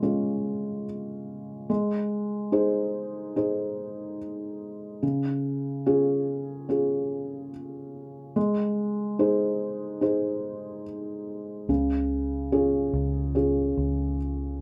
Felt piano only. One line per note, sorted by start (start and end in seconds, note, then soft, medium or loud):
0.00 1.65 C#3 medium
0.00 0.02 G#3 soft
0.00 0.83 G#3 soft
0.00 0.03 C#4 soft
0.00 0.83 C#4 soft
0.00 0.03 F4 soft
0.00 0.84 F4 soft
1.70 4.99 G#3 medium
2.52 3.33 D#4 soft
2.52 3.33 G#4 soft
2.52 3.34 C5 soft
3.36 4.17 D#4 soft
3.36 4.17 G#4 soft
3.36 4.17 C5 soft
5.03 8.32 C#3 medium
5.86 6.67 C#4 soft
5.86 6.67 F4 soft
5.86 6.67 G#4 medium
6.69 7.50 C#4 soft
6.69 7.50 F4 soft
6.69 7.51 G#4 soft
8.36 11.65 G#3 medium
9.19 10.00 D#4 soft
9.19 10.00 G#4 soft
9.19 10.00 C5 soft
10.01 10.83 D#4 soft
10.01 10.83 G#4 soft
10.01 10.83 C5 soft
11.69 14.61 C#3 medium
12.52 13.33 C#4 soft
12.52 13.33 F4 soft
12.52 13.33 G#4 soft
13.35 14.16 C#4 soft
13.35 14.17 F4 soft
13.35 14.17 G#4 soft